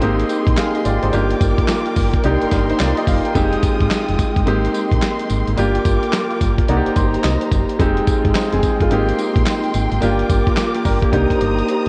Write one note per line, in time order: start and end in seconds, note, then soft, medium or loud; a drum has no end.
0.00 0.24 G#1 loud
0.00 1.10 A#3 medium
0.00 1.11 C4 medium
0.00 1.12 D#4 medium
0.00 0.29 D#4 medium
0.00 0.30 G4 medium
0.00 1.11 G#4 medium
0.00 0.18 C5 medium
0.00 5.54 G5 medium
0.00 1.12 C6 medium
0.00 closed hi-hat medium
0.20 closed hi-hat medium
0.29 closed hi-hat medium
0.29 tambourine medium
0.47 0.55 A#1 loud
0.47 kick loud
0.47 closed hi-hat medium
0.57 0.75 G#4 medium
0.57 0.74 F5 medium
0.57 snare loud
0.57 clap medium
0.57 closed hi-hat medium
0.57 tambourine loud
0.75 0.85 G4 medium
0.75 0.85 D#5 medium
0.75 closed hi-hat medium
0.85 0.99 G#1 medium
0.85 1.02 F4 medium
0.85 1.02 D5 medium
0.85 closed hi-hat medium
0.85 tambourine medium
1.03 1.11 G#1 medium
1.03 1.29 D#4 medium
1.03 1.29 C5 medium
1.03 closed hi-hat medium
1.12 1.35 G1 loud
1.12 2.21 A#3 medium
1.12 2.22 D4 medium
1.12 2.23 F4 medium
1.12 2.22 F4 medium
1.12 2.23 G4 medium
1.12 3.33 A#4 medium
1.12 2.23 D6 medium
1.12 closed hi-hat medium
1.12 tambourine medium
1.30 closed hi-hat medium
1.41 1.54 G1 loud
1.41 kick loud
1.41 closed hi-hat medium
1.41 tambourine medium
1.58 kick loud
1.58 closed hi-hat soft
1.68 snare loud
1.68 clap medium
1.68 closed hi-hat medium
1.68 tambourine loud
1.86 closed hi-hat medium
1.96 2.18 G1 loud
1.96 kick medium
1.96 open hi-hat medium
1.96 tambourine medium
2.13 kick medium
2.13 closed hi-hat medium
2.23 2.38 C2 loud
2.23 3.33 A#3 medium
2.23 2.51 D4 medium
2.23 3.34 D#4 medium
2.23 2.52 D#4 medium
2.23 2.52 G4 medium
2.23 3.34 C6 medium
2.23 closed hi-hat medium
2.42 2.46 G1 medium
2.42 closed hi-hat medium
2.51 2.73 G1 loud
2.51 2.69 D4 medium
2.51 2.69 A#4 medium
2.51 kick medium
2.51 snare medium
2.51 closed hi-hat medium
2.51 tambourine medium
2.70 2.80 D#4 medium
2.70 2.79 C5 medium
2.70 closed hi-hat medium
2.79 2.94 C2 medium
2.79 2.97 F4 medium
2.79 2.96 D5 medium
2.79 snare loud
2.79 clap medium
2.79 closed hi-hat medium
2.79 tambourine medium
2.97 3.07 G4 medium
2.97 3.07 D#5 medium
2.97 closed hi-hat medium
3.07 3.21 F#1 loud
3.07 3.24 F5 medium
3.07 kick loud
3.07 open hi-hat medium
3.07 tambourine medium
3.25 3.52 A#4 medium
3.25 3.52 G5 medium
3.25 closed hi-hat medium
3.35 3.57 F1 loud
3.35 4.44 G#3 medium
3.35 5.55 G#3 medium
3.35 4.44 C4 medium
3.35 4.45 D#4 medium
3.35 4.45 F4 medium
3.35 4.45 G4 medium
3.35 4.45 D#6 medium
3.35 kick loud
3.35 closed hi-hat medium
3.35 tambourine medium
3.53 closed hi-hat medium
3.63 kick loud
3.63 closed hi-hat medium
3.63 tambourine medium
3.81 3.89 G#1 loud
3.81 kick medium
3.81 closed hi-hat soft
3.91 snare loud
3.91 clap medium
3.91 closed hi-hat medium
3.91 tambourine loud
4.08 4.17 F1 medium
4.08 closed hi-hat medium
4.19 kick medium
4.19 closed hi-hat medium
4.19 tambourine medium
4.36 4.44 G1 medium
4.36 kick loud
4.36 closed hi-hat soft
4.46 4.68 G#1 loud
4.46 5.55 A#3 medium
4.46 5.55 C4 medium
4.46 5.56 D#4 medium
4.46 5.56 G4 medium
4.46 5.56 C6 medium
4.46 closed hi-hat medium
4.65 closed hi-hat medium
4.74 closed hi-hat medium
4.74 tambourine medium
4.92 5.00 A#1 loud
4.92 kick loud
4.92 closed hi-hat medium
5.02 snare loud
5.02 clap medium
5.02 closed hi-hat medium
5.02 tambourine medium
5.19 closed hi-hat medium
5.30 5.43 G#1 loud
5.30 closed hi-hat medium
5.30 tambourine medium
5.47 5.55 G#1 medium
5.47 closed hi-hat medium
5.57 5.79 G1 loud
5.57 6.66 A#3 medium
5.57 6.66 D4 medium
5.57 6.67 F4 medium
5.57 6.67 G4 medium
5.57 6.67 A#4 medium
5.57 6.67 G5 medium
5.57 6.67 D6 medium
5.57 closed hi-hat medium
5.57 tambourine medium
5.75 closed hi-hat medium
5.85 5.99 G1 loud
5.85 kick loud
5.85 closed hi-hat medium
5.85 tambourine medium
6.03 closed hi-hat medium
6.13 snare loud
6.13 clap loud
6.13 closed hi-hat medium
6.13 tambourine loud
6.31 closed hi-hat medium
6.41 6.62 G1 medium
6.41 kick medium
6.41 closed hi-hat medium
6.41 tambourine medium
6.58 kick loud
6.58 closed hi-hat medium
6.68 6.82 C2 loud
6.68 7.77 A#3 medium
6.68 7.78 D#4 medium
6.68 6.78 F#4 medium
6.68 7.79 G4 medium
6.68 7.79 C5 medium
6.68 7.78 D5 medium
6.68 7.79 A#5 medium
6.68 closed hi-hat medium
6.77 7.80 G4 medium
6.86 6.90 G1 soft
6.86 closed hi-hat medium
6.96 7.18 G1 loud
6.96 7.22 C6 medium
6.96 kick medium
6.96 closed hi-hat medium
6.96 tambourine medium
7.14 closed hi-hat medium
7.24 7.38 C2 loud
7.24 7.76 D#5 medium
7.24 snare loud
7.24 clap medium
7.24 closed hi-hat medium
7.24 tambourine loud
7.41 closed hi-hat medium
7.52 7.65 F#1 loud
7.52 kick loud
7.52 closed hi-hat medium
7.52 tambourine medium
7.69 closed hi-hat medium
7.79 8.01 F1 loud
7.79 8.34 G#3 medium
7.79 10.00 G#3 medium
7.79 8.34 C4 medium
7.79 8.35 D#4 medium
7.79 8.90 F4 medium
7.79 8.35 G4 medium
7.79 11.10 G5 medium
7.79 kick loud
7.79 closed hi-hat medium
7.79 tambourine medium
7.97 closed hi-hat medium
8.07 kick loud
8.07 closed hi-hat medium
8.07 tambourine medium
8.25 8.33 G#1 medium
8.25 kick medium
8.25 closed hi-hat medium
8.35 8.52 D#4 medium
8.35 8.52 C5 medium
8.35 snare loud
8.35 clap loud
8.35 closed hi-hat medium
8.35 tambourine loud
8.52 8.61 F1 medium
8.52 8.80 C4 medium
8.52 8.79 G#4 medium
8.52 closed hi-hat medium
8.63 kick medium
8.63 closed hi-hat medium
8.63 tambourine medium
8.80 8.88 G1 medium
8.80 9.08 G#3 medium
8.80 9.07 F4 medium
8.80 kick loud
8.80 closed hi-hat medium
8.90 9.12 G#1 loud
8.90 9.99 A#3 medium
8.90 10.00 C4 medium
8.90 10.01 D#4 medium
8.90 10.00 D#4 medium
8.90 10.01 G4 medium
8.90 10.01 C6 medium
8.90 closed hi-hat medium
9.08 closed hi-hat medium
9.18 closed hi-hat medium
9.18 tambourine medium
9.36 9.44 A#1 loud
9.36 kick loud
9.36 closed hi-hat medium
9.46 snare loud
9.46 clap medium
9.46 closed hi-hat medium
9.46 tambourine loud
9.64 closed hi-hat medium
9.74 9.88 G#1 loud
9.74 closed hi-hat medium
9.74 tambourine medium
9.92 10.00 G#1 medium
9.92 closed hi-hat medium
10.01 10.24 G1 loud
10.01 10.28 A#3 medium
10.01 10.29 D4 medium
10.01 11.12 F4 medium
10.01 10.29 F4 medium
10.01 10.30 G4 medium
10.01 11.12 A#4 medium
10.01 11.12 D6 medium
10.01 closed hi-hat medium
10.01 tambourine medium
10.19 closed hi-hat medium
10.30 10.43 G1 loud
10.30 kick loud
10.30 closed hi-hat medium
10.30 tambourine medium
10.47 kick medium
10.47 closed hi-hat soft
10.56 snare loud
10.56 clap loud
10.56 closed hi-hat medium
10.56 tambourine loud
10.75 10.85 A#3 medium
10.75 10.85 G4 medium
10.75 closed hi-hat medium
10.85 11.07 G1 loud
10.85 11.02 D4 medium
10.85 11.02 A#4 medium
10.85 kick medium
10.85 open hi-hat medium
10.85 tambourine medium
11.02 11.10 A#3 medium
11.02 11.13 G4 medium
11.02 kick loud
11.02 closed hi-hat soft
11.11 11.27 C2 loud
11.11 11.89 A#3 medium
11.11 11.89 D4 medium
11.11 11.89 D#4 medium
11.11 11.89 G4 medium
11.11 11.89 C5 medium
11.11 11.89 A#5 medium
11.11 11.89 D#6 medium
11.11 kick medium
11.11 closed hi-hat medium
11.30 kick medium
11.30 closed hi-hat medium
11.41 11.63 G1 medium
11.41 closed hi-hat medium
11.59 closed hi-hat medium
11.69 closed hi-hat medium